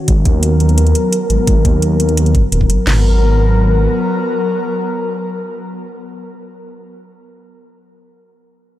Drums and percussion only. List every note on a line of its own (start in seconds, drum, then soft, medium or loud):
0.08 kick loud
0.08 closed hi-hat medium
0.25 kick loud
0.25 closed hi-hat medium
0.43 closed hi-hat medium
0.60 closed hi-hat medium
0.69 closed hi-hat soft
0.78 closed hi-hat medium
0.87 closed hi-hat soft
0.95 closed hi-hat medium
1.13 closed hi-hat medium
1.30 closed hi-hat medium
1.47 kick loud
1.47 closed hi-hat medium
1.65 kick loud
1.65 closed hi-hat medium
1.82 closed hi-hat medium
2.00 closed hi-hat medium
2.09 closed hi-hat soft
2.17 closed hi-hat medium
2.26 closed hi-hat soft
2.35 kick loud
2.35 closed hi-hat medium
2.52 closed hi-hat medium
2.61 kick medium
2.70 closed hi-hat medium
2.87 snare loud
2.87 floor tom loud
2.87 crash medium